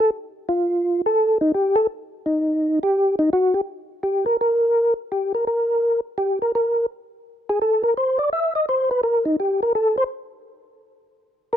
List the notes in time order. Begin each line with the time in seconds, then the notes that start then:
0.00 A4
0.49 F4
1.06 A4
1.41 D#4
1.54 G4
1.76 A4
2.26 D#4
2.83 G4
3.19 D#4
3.33 F#4
3.54 G4
4.03 G4
4.26 A#4
4.41 A#4
5.12 G4
5.35 A#4
5.47 A#4
6.18 G4
6.42 A#4
6.55 A#4
7.49 G#4
7.62 A4
7.84 A#4
7.97 C5
8.19 D5
8.33 E5
8.55 D#5
8.69 C5
8.91 B4
9.03 A#4
9.25 D#4
9.40 G4
9.63 A#4
9.75 A4
9.98 C5
11.53 A#4